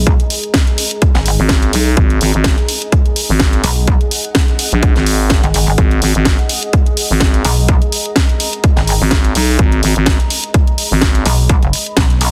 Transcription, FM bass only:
1.39 1.72 G#1 medium
1.73 1.95 B1 loud
1.97 2.19 G#1 loud
2.21 2.32 G#1 loud
2.34 2.56 G#1 medium
3.29 3.62 G#1 medium
4.72 4.94 A#1 medium
4.96 5.41 G#1 loud
5.78 6.00 G#1 loud
6.02 6.13 G#1 loud
6.15 6.37 G#1 loud
7.10 7.43 G#1 medium
9.01 9.33 G#1 medium
9.35 9.57 B1 loud
9.59 9.81 G#1 loud
9.83 9.94 G#1 loud
9.96 10.18 G#1 medium
10.91 11.24 G#1 loud

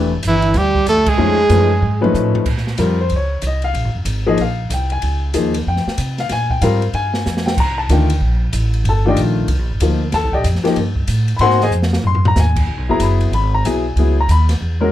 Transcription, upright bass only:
0.00 0.22 E1 medium
0.23 0.53 G1 medium
0.54 0.85 D2 medium
0.87 0.97 E2 medium
0.97 1.08 D2 medium
1.08 1.17 B1 medium
1.18 1.49 F2 medium
1.49 1.81 F#2 medium
1.82 2.13 G#2 medium
2.14 2.45 A2 medium
2.46 2.77 A#2 medium
2.78 3.09 F2 medium
3.10 3.41 C#2 medium
3.42 3.73 C2 medium
3.74 3.84 A#1 medium
3.84 3.94 G#1 medium
3.95 4.04 F1 medium
4.05 4.37 G#1 medium
4.38 4.69 A#1 medium
4.70 5.01 C2 medium
5.03 5.33 C#2 medium
5.34 5.65 D#2 medium
5.67 5.85 F2 medium
5.86 muted upright bass stroke soft
5.98 6.29 C3 medium
6.30 6.61 A#2 medium
6.61 6.93 G#2 medium
6.93 7.25 G2 medium
7.26 7.56 F2 medium
7.57 7.88 C2 medium
7.89 8.20 D2 medium
8.20 8.52 A#1 medium
8.53 8.83 A1 medium
8.84 9.15 G1 medium
9.16 9.47 A#1 medium
9.47 9.59 C2 medium
9.59 9.70 A#1 medium
9.70 9.80 G1 medium
9.80 10.12 D2 medium
10.13 10.23 D#2 medium
10.23 10.33 C2 medium
10.34 10.43 A#1 medium
10.44 10.63 F2 medium
10.64 muted upright bass stroke soft
10.76 11.07 G2 medium
11.08 11.38 A2 medium
11.39 11.69 G#2 medium
11.70 12.02 F2 medium
12.03 12.35 F#2 medium
12.36 12.66 D#2 medium
12.67 12.77 C#2 medium
12.77 12.88 B1 soft
12.89 12.99 G#1 medium
12.99 13.31 F#1 medium
13.31 13.63 G#1 medium
13.63 13.95 B1 medium
13.96 14.27 C#2 medium
14.28 14.59 D#2 medium
14.61 14.92 E2 medium

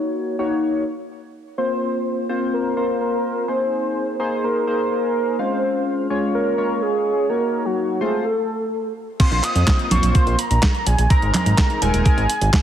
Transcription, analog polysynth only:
0.00 0.36 A#3 medium
0.00 0.36 D#4 medium
0.00 0.36 F#4 medium
0.00 0.36 C#5 medium
0.39 0.84 A#3 loud
0.39 0.84 D#4 medium
0.39 0.84 F#4 medium
0.39 0.84 C#5 loud
1.58 2.27 A#3 medium
1.58 2.27 C4 medium
1.58 2.27 F4 medium
1.58 2.27 C5 medium
2.29 2.74 A#3 loud
2.29 2.74 C4 medium
2.29 2.74 F4 medium
2.29 2.74 C5 loud
2.77 3.46 A#3 loud
2.77 3.46 C4 medium
2.77 3.46 F4 medium
2.77 3.46 C5 loud
3.48 4.17 A#3 medium
3.48 4.17 D#4 medium
3.48 4.17 G#4 medium
3.48 4.17 C5 medium
4.20 4.65 A#3 loud
4.20 4.65 D#4 medium
4.20 4.65 G#4 medium
4.20 4.65 C5 loud
4.67 5.36 A#3 medium
4.67 5.36 D#4 medium
4.67 5.36 G#4 medium
4.67 5.36 C5 loud
5.39 6.08 G#3 medium
5.39 6.08 C#4 medium
5.39 6.08 F4 medium
5.39 6.08 F5 medium
6.10 6.55 G#3 loud
6.10 6.55 C#4 medium
6.10 6.55 F4 loud
6.10 6.55 C#5 loud
6.58 7.27 G#3 loud
6.58 7.27 C#4 medium
6.58 7.27 F4 medium
6.58 7.27 C#5 loud
7.29 7.98 A#3 medium
7.29 7.98 D#4 medium
7.29 7.98 F#4 medium
7.29 7.98 C#5 medium
8.01 8.25 A3 loud
8.01 8.25 C4 medium
8.01 8.25 F4 medium
8.01 8.25 C5 loud
9.20 9.88 A#3 medium
9.20 9.88 C4 medium
9.20 9.88 F4 medium
9.20 9.88 C5 medium
9.91 10.36 A#3 loud
9.91 10.36 C4 medium
9.91 10.36 F4 loud
9.91 10.36 C5 loud
11.10 11.79 G#3 medium
11.10 11.79 C4 medium
11.10 11.79 D#4 medium
11.10 11.79 A#4 medium
11.82 12.27 G#3 loud
11.82 12.27 C4 medium
11.82 12.27 D#4 medium
11.82 12.27 A#4 loud

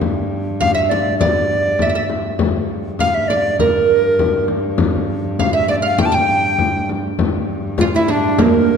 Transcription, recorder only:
0.61 0.74 F5 loud
0.74 0.80 E5 medium
0.88 1.17 D5 medium
1.19 2.05 D5 medium
3.00 3.16 F5 loud
3.14 3.30 E5 medium
3.28 3.59 D5 medium
3.61 4.46 A#4 medium
5.39 5.53 F5 medium
5.55 5.69 E5 medium
5.70 5.76 D5 medium
5.86 5.99 F5 medium
6.02 6.07 G5 medium
6.02 6.16 A5 medium
6.14 6.90 G5 loud
7.78 7.84 F4 loud
7.95 8.12 E4 medium
8.10 8.44 D4 medium
8.42 8.77 A#4 medium

